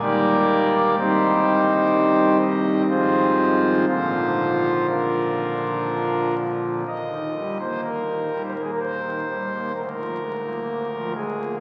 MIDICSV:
0, 0, Header, 1, 2, 480
1, 0, Start_track
1, 0, Key_signature, -3, "major"
1, 0, Tempo, 955414
1, 496, Time_signature, 3, 2, 24, 8
1, 1455, Tempo, 995025
1, 3375, Tempo, 963082
1, 4335, Tempo, 941915
1, 5761, End_track
2, 0, Start_track
2, 0, Title_t, "Pipe organ"
2, 0, Program_c, 0, 19
2, 7, Note_on_c, 0, 27, 65
2, 7, Note_on_c, 0, 39, 65
2, 7, Note_on_c, 0, 55, 53
2, 8, Note_on_c, 0, 51, 53
2, 8, Note_on_c, 0, 58, 56
2, 8, Note_on_c, 0, 67, 96
2, 8, Note_on_c, 0, 74, 118
2, 9, Note_on_c, 0, 70, 84
2, 478, Note_off_c, 0, 27, 0
2, 478, Note_off_c, 0, 39, 0
2, 478, Note_off_c, 0, 51, 0
2, 478, Note_off_c, 0, 55, 0
2, 478, Note_off_c, 0, 58, 0
2, 478, Note_off_c, 0, 67, 0
2, 478, Note_off_c, 0, 74, 0
2, 479, Note_off_c, 0, 70, 0
2, 489, Note_on_c, 0, 36, 70
2, 490, Note_on_c, 0, 24, 68
2, 490, Note_on_c, 0, 60, 56
2, 490, Note_on_c, 0, 72, 101
2, 491, Note_on_c, 0, 51, 55
2, 491, Note_on_c, 0, 55, 56
2, 492, Note_on_c, 0, 63, 76
2, 493, Note_on_c, 0, 67, 76
2, 1190, Note_off_c, 0, 72, 0
2, 1191, Note_off_c, 0, 63, 0
2, 1192, Note_off_c, 0, 67, 0
2, 1210, Note_on_c, 0, 75, 100
2, 1417, Note_off_c, 0, 75, 0
2, 1432, Note_off_c, 0, 24, 0
2, 1432, Note_off_c, 0, 36, 0
2, 1432, Note_off_c, 0, 51, 0
2, 1432, Note_off_c, 0, 55, 0
2, 1432, Note_off_c, 0, 60, 0
2, 1452, Note_on_c, 0, 72, 93
2, 1453, Note_on_c, 0, 32, 58
2, 1453, Note_on_c, 0, 44, 59
2, 1453, Note_on_c, 0, 51, 47
2, 1453, Note_on_c, 0, 60, 45
2, 1454, Note_on_c, 0, 53, 53
2, 1454, Note_on_c, 0, 65, 73
2, 1454, Note_on_c, 0, 68, 75
2, 1915, Note_off_c, 0, 32, 0
2, 1915, Note_off_c, 0, 44, 0
2, 1915, Note_off_c, 0, 60, 0
2, 1915, Note_off_c, 0, 72, 0
2, 1916, Note_off_c, 0, 51, 0
2, 1916, Note_off_c, 0, 53, 0
2, 1916, Note_off_c, 0, 65, 0
2, 1916, Note_off_c, 0, 68, 0
2, 1927, Note_on_c, 0, 53, 51
2, 1927, Note_on_c, 0, 72, 112
2, 1928, Note_on_c, 0, 34, 59
2, 1928, Note_on_c, 0, 46, 67
2, 1928, Note_on_c, 0, 50, 53
2, 1928, Note_on_c, 0, 65, 83
2, 2403, Note_off_c, 0, 72, 0
2, 2404, Note_off_c, 0, 65, 0
2, 2418, Note_on_c, 0, 65, 51
2, 2418, Note_on_c, 0, 70, 73
2, 2419, Note_on_c, 0, 62, 53
2, 3119, Note_off_c, 0, 65, 0
2, 3119, Note_off_c, 0, 70, 0
2, 3120, Note_off_c, 0, 62, 0
2, 3355, Note_off_c, 0, 34, 0
2, 3355, Note_off_c, 0, 46, 0
2, 3355, Note_off_c, 0, 50, 0
2, 3355, Note_off_c, 0, 53, 0
2, 3372, Note_on_c, 0, 39, 68
2, 3374, Note_on_c, 0, 27, 63
2, 3374, Note_on_c, 0, 75, 116
2, 3497, Note_on_c, 0, 51, 51
2, 3603, Note_off_c, 0, 51, 0
2, 3615, Note_on_c, 0, 55, 49
2, 3722, Note_off_c, 0, 55, 0
2, 3724, Note_off_c, 0, 75, 0
2, 3734, Note_on_c, 0, 58, 52
2, 3735, Note_on_c, 0, 72, 87
2, 3838, Note_off_c, 0, 72, 0
2, 3855, Note_on_c, 0, 70, 94
2, 3949, Note_off_c, 0, 58, 0
2, 3978, Note_on_c, 0, 51, 50
2, 4085, Note_off_c, 0, 51, 0
2, 4097, Note_on_c, 0, 55, 54
2, 4144, Note_off_c, 0, 70, 0
2, 4153, Note_on_c, 0, 72, 84
2, 4192, Note_off_c, 0, 72, 0
2, 4201, Note_on_c, 0, 70, 83
2, 4204, Note_off_c, 0, 55, 0
2, 4220, Note_on_c, 0, 58, 59
2, 4239, Note_off_c, 0, 70, 0
2, 4245, Note_on_c, 0, 68, 89
2, 4284, Note_off_c, 0, 68, 0
2, 4293, Note_on_c, 0, 70, 89
2, 4330, Note_off_c, 0, 70, 0
2, 4336, Note_on_c, 0, 72, 104
2, 4433, Note_off_c, 0, 58, 0
2, 4460, Note_on_c, 0, 51, 53
2, 4567, Note_off_c, 0, 51, 0
2, 4580, Note_on_c, 0, 55, 54
2, 4686, Note_off_c, 0, 55, 0
2, 4704, Note_on_c, 0, 58, 60
2, 4796, Note_off_c, 0, 27, 0
2, 4796, Note_off_c, 0, 39, 0
2, 4803, Note_off_c, 0, 58, 0
2, 4804, Note_off_c, 0, 72, 0
2, 4819, Note_on_c, 0, 26, 79
2, 4820, Note_on_c, 0, 38, 69
2, 4821, Note_on_c, 0, 70, 111
2, 4850, Note_off_c, 0, 70, 0
2, 4855, Note_on_c, 0, 72, 96
2, 4884, Note_off_c, 0, 72, 0
2, 4890, Note_on_c, 0, 70, 120
2, 4940, Note_on_c, 0, 53, 51
2, 5045, Note_off_c, 0, 53, 0
2, 5059, Note_on_c, 0, 56, 58
2, 5164, Note_off_c, 0, 56, 0
2, 5179, Note_on_c, 0, 58, 58
2, 5391, Note_off_c, 0, 58, 0
2, 5417, Note_on_c, 0, 53, 56
2, 5517, Note_off_c, 0, 70, 0
2, 5523, Note_off_c, 0, 53, 0
2, 5534, Note_on_c, 0, 56, 61
2, 5535, Note_on_c, 0, 68, 109
2, 5642, Note_off_c, 0, 56, 0
2, 5654, Note_on_c, 0, 58, 59
2, 5740, Note_off_c, 0, 68, 0
2, 5756, Note_off_c, 0, 26, 0
2, 5757, Note_off_c, 0, 38, 0
2, 5757, Note_off_c, 0, 58, 0
2, 5761, End_track
0, 0, End_of_file